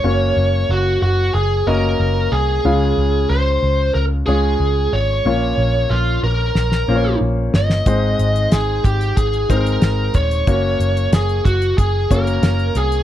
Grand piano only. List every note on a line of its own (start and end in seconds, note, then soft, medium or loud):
0.04 1.08 A#3 medium
0.04 1.08 C#4 medium
0.04 1.08 F#4 medium
0.04 1.08 C#5 medium
1.67 2.45 A#3 medium
1.67 2.45 C#4 medium
1.67 2.45 F#4 medium
1.67 2.45 D#5 medium
2.65 3.59 C#3 medium
2.65 3.69 G#3 medium
2.65 3.69 C#4 medium
2.65 3.69 F4 medium
2.65 3.69 F5 medium
4.27 5.06 G#3 medium
4.27 5.06 C#4 medium
4.27 5.06 F4 medium
4.27 5.06 C#5 medium
5.25 6.20 A#2 medium
5.25 6.30 A#3 medium
5.25 6.30 C#4 medium
5.25 6.30 F4 medium
5.25 6.30 C#5 medium
6.88 7.67 A#3 medium
6.88 7.67 C#4 medium
6.88 7.67 F4 medium
6.88 6.95 C5 medium
6.95 7.70 C#5 medium
7.86 8.80 G#2 medium
7.86 8.91 G#3 medium
7.86 8.91 C4 medium
7.86 8.91 D#4 medium
7.86 8.91 C5 medium
9.49 10.27 G#3 medium
9.49 10.28 C4 medium
9.49 10.28 D#4 medium
9.49 10.28 C5 medium
10.47 11.51 A#3 medium
10.47 11.52 C#4 medium
10.47 11.52 F#4 medium
10.47 11.52 C#5 medium
12.10 12.89 A#3 medium
12.10 12.89 C#4 medium
12.10 12.89 F#4 medium
12.10 12.89 C#5 medium